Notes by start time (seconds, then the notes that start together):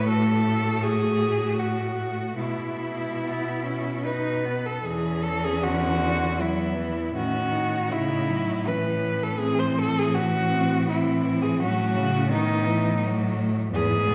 Already playing: A2 A3
0.09 F#4 A4
0.82 G#4
1.59 F#4
2.38 B2 G#3 E4
3.21 B3
3.63 C#4
4.04 D#4 B4
4.45 B3
4.66 A4
4.84 E2 E3 C#4 G#4
5.23 A4
5.44 G#4
5.61 D3 F#4
6.39 F#3 B3 E4
6.75 E3
7.13 A2 D#3 C#4 F#4
7.52 D#4
7.89 C#3 E4
8.29 F#3
8.65 E3 C#4 B4
9.23 A4
9.40 E3 C4 G#4
9.59 C5
9.79 A4
9.99 G#4
10.14 C#4 F#4
10.51 C4
10.88 C4 E4
11.42 G#4
11.60 A2 F#3 C#4 F#4
11.94 C#3
12.30 D#3 B3 D#4
12.65 E3
13.01 F#3 A3
13.72 E2 G#2 B3 G#4
13.91 G#2
14.07 B2